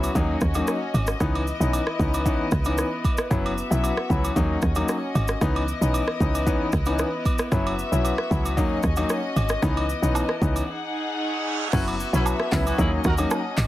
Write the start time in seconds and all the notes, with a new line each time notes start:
Already playing: B3 F#4 E5
0.04 high agogo, shaker
0.15 D#2 F#3 A#3 C#4 D#4 D#5, kick, shaker
0.41 D#2, kick, cross-stick, shaker
0.54 F#3 A#3 C#4 D#4, high agogo, shaker
0.67 cross-stick, shaker
0.94 G#1, high agogo, shaker
1.07 cross-stick, shaker
1.20 C#2 E3 B3 C#4 D#4 E4, kick, cross-stick, shaker
1.35 high agogo
1.47 shaker
1.60 B1 E3 B3 C#4 D#4, shaker
1.73 high agogo, shaker
1.87 cross-stick
1.99 C#2 E3 B3 C#4 D#4, kick, shaker
2.14 high agogo, shaker
2.25 E3 B3 C#4 D#4, kick, shaker
2.51 C#2, kick, cross-stick, shaker
2.65 E3 B3 C#4 D#4, high agogo, shaker
2.78 cross-stick, shaker
3.04 kick, high agogo, shaker
3.17 cross-stick, shaker
3.30 F#1 F#3 B3 C#4 E4 F#4 E5, kick, cross-stick, shaker
3.46 high agogo
3.58 shaker
3.71 B1 F#3 B3 C#4 E4, shaker
3.84 high agogo, shaker
3.97 cross-stick
4.09 C#2 F#3 B3 C#4 E4, kick, shaker
4.24 high agogo, shaker
4.36 D#2 F#3 A#3 C#4 D#4 D#5, kick, shaker
4.62 D#2, kick, cross-stick, shaker
4.75 F#3 A#3 C#4 D#4, high agogo, shaker
4.88 cross-stick, shaker
5.15 G#1, high agogo, shaker
5.28 cross-stick, shaker
5.41 C#2 E3 B3 C#4 D#4 E4, kick, cross-stick, shaker
5.56 high agogo
5.68 shaker
5.81 B1 E3 B3 C#4 D#4, shaker
5.94 high agogo, shaker
6.08 cross-stick
6.20 C#2 E3 B3 C#4 D#4, kick, shaker
6.35 high agogo, shaker
6.46 E3 B3 C#4 D#4, kick, shaker
6.72 C#2, kick, cross-stick, shaker
6.86 E3 B3 C#4 D#4, high agogo, shaker
6.99 cross-stick, shaker
7.25 kick, high agogo, shaker
7.38 cross-stick, shaker
7.52 F#1 F#3 B3 C#4 E4 F#4 E5, kick, cross-stick, shaker
7.67 high agogo
7.79 shaker
7.92 B1 F#3 B3 C#4 E4, shaker
8.05 high agogo, shaker
8.18 cross-stick
8.30 C#2 F#3 B3 C#4 E4, kick, shaker
8.46 high agogo, shaker
8.57 D#2 F#3 A#3 C#4 D#4 D#5, kick, shaker
8.83 D#2, kick, cross-stick, shaker
8.96 F#3 A#3 C#4 D#4, high agogo, shaker
9.09 cross-stick, shaker
9.36 G#1, high agogo, shaker
9.49 cross-stick, shaker
9.62 C#2 E3 B3 C#4 D#4 E4, kick, cross-stick, shaker
9.77 high agogo
9.89 shaker
10.02 B1 E3 B3 C#4 D#4, shaker
10.15 high agogo, low woodblock, shaker
10.29 cross-stick
10.41 C#2 E3 B3 C#4 D#4, kick, shaker
10.56 high agogo, shaker
10.68 D#4 G#4 F#5, reverse cymbal
11.73 F#1 F#3 B3 C#4 E4 F#4 E5, kick, cross-stick, crash, shaker
11.88 high agogo
12.00 shaker
12.13 B1 F#3 B3 C#4 E4, shaker
12.26 high agogo, low woodblock, shaker
12.40 cross-stick
12.52 C#2 F#3 B3 C#4 E4, kick, clap, open hi-hat, shaker
12.66 B3 C#4 F#4, high agogo, shaker
12.78 D#2 F#3 A#3 C#4 D#4 E4 F#4 G#4 D#5, kick, shaker
13.04 D#2 D#4 F#4 A#4, kick, cross-stick, shaker
13.18 F#3 A#3 C#4 D#4, high agogo, shaker
13.31 cross-stick, low woodblock, shaker
13.57 G#1, clap, open hi-hat, high agogo, shaker